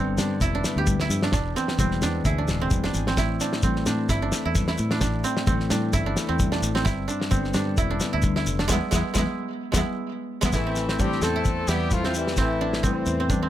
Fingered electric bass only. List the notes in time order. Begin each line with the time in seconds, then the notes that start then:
Already playing: G1
0.18 G2
0.41 E1
0.76 D2
1.10 G2
1.33 E1
1.79 E1
2.03 E2
2.25 D2
2.48 D1
2.71 E1
2.94 G#1
3.17 A1
3.63 A1
3.87 A2
4.09 G1
4.46 E2
4.79 A2
5.01 A1
5.47 A1
5.71 A2
5.94 G1
6.29 E2
6.62 A1
6.86 G1
7.31 G1
7.55 G2
7.78 E1
8.14 D2
8.47 F1
8.70 E2
8.92 E2
9.16 E2
9.74 E2
10.43 E2
10.54 A1
11.22 E2
11.68 E2
12.38 A1
13.07 E2